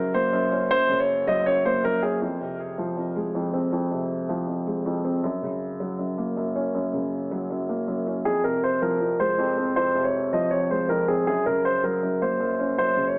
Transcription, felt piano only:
0.00 0.33 F#2 medium
0.00 0.33 C#3 medium
0.00 0.71 F#3 medium
0.14 1.08 A#3 medium
0.33 0.69 F#2 medium
0.52 1.46 C#4 medium
0.70 1.45 F#2 medium
0.89 1.84 C#3 medium
1.27 2.22 F#3 loud
1.46 1.82 F#2 medium
1.65 2.22 A#3 medium
1.84 2.22 F#2 medium
2.03 2.22 C#4 medium
2.21 2.95 F2 medium
2.41 3.35 C3 medium
2.78 3.72 F3 medium
2.97 3.33 F2 medium
3.16 4.10 G#3 medium
3.35 3.71 F2 medium
3.54 4.48 C4 medium
3.73 4.46 F2 medium
3.91 4.86 C3 medium
4.29 5.23 F3 loud
4.48 4.84 F2 medium
4.67 5.23 G#3 medium
4.86 5.23 F2 medium
5.05 5.23 C4 medium
5.24 5.97 F#2 medium
5.42 6.37 C#3 medium
5.80 6.74 F#3 medium
5.99 6.35 F#2 medium
6.18 7.12 A#3 medium
6.37 6.73 F#2 medium
6.56 7.50 C#4 medium
6.74 7.49 F#2 medium
6.93 7.88 C#3 medium
7.31 8.25 F#3 loud
7.50 7.86 F#2 medium
7.69 8.25 A#3 medium
7.88 8.25 F#2 medium
8.07 8.25 C#4 medium
8.25 8.99 F2 medium
8.44 9.39 C3 medium
8.82 9.76 F3 loud
9.01 9.37 F2 medium
9.20 10.14 G#3 medium
9.39 9.75 F2 medium
9.57 10.52 C4 medium
9.76 10.50 F2 medium
9.95 10.89 C3 medium
10.33 11.27 F3 loud
10.52 10.88 F2 medium
10.71 11.27 G#3 medium
10.89 11.27 F2 medium
11.08 11.27 C4 medium
11.27 12.01 F#2 medium
11.46 12.40 C#3 medium
11.84 12.78 F#3 medium
12.03 12.39 F#2 medium
12.21 13.16 A#3 medium
12.40 12.76 F#2 medium
12.59 13.19 C#4 medium
12.78 13.19 F#2 medium
12.97 13.19 C#3 medium

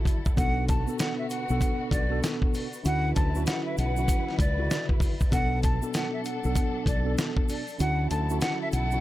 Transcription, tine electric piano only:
0.00 0.19 C#3 medium
0.00 0.19 D3 loud
0.00 0.19 E4 medium
0.00 0.20 F#4 loud
0.36 0.82 B2 loud
0.36 0.83 B3 medium
0.36 0.83 D4 medium
0.36 0.83 A4 loud
0.87 1.43 B2 medium
0.87 1.43 B3 medium
0.87 1.44 D4 medium
0.87 1.44 A4 loud
1.49 2.05 B2 medium
1.49 2.05 B3 medium
1.49 2.06 D4 medium
1.49 2.06 A4 loud
2.09 2.66 B2 loud
2.09 2.66 B3 medium
2.09 2.67 D4 medium
2.09 2.67 A4 loud
2.83 3.30 D3 medium
2.83 3.30 C#4 medium
2.83 3.30 E4 medium
2.83 3.31 F#4 loud
3.34 3.90 D3 medium
3.34 3.91 C#4 medium
3.34 3.91 E4 medium
3.34 3.91 F#4 loud
3.97 4.36 D3 medium
3.97 4.37 C#4 medium
3.97 4.37 E4 medium
3.97 4.38 F#4 loud
4.57 5.14 C#3 medium
4.57 5.13 D3 loud
4.57 5.14 E4 medium
4.57 5.15 F#4 loud
5.31 5.77 B2 medium
5.31 5.77 B3 medium
5.31 5.78 D4 medium
5.31 5.78 A4 loud
5.81 6.38 B2 medium
5.81 6.38 B3 medium
5.81 6.38 D4 medium
5.81 6.39 A4 loud
6.44 7.00 B2 medium
6.44 7.00 B3 medium
6.44 7.00 D4 medium
6.44 7.01 A4 loud
7.04 7.61 B2 loud
7.04 7.61 B3 medium
7.04 7.62 D4 medium
7.04 7.62 A4 loud
7.78 8.24 D3 medium
7.78 8.25 C#4 medium
7.78 8.25 E4 medium
7.78 8.26 F#4 loud
8.29 8.85 D3 medium
8.29 8.85 C#4 medium
8.29 8.86 E4 medium
8.29 8.86 F#4 loud
8.91 9.00 D3 medium
8.91 9.00 C#4 medium
8.91 9.00 E4 medium
8.91 9.00 F#4 loud

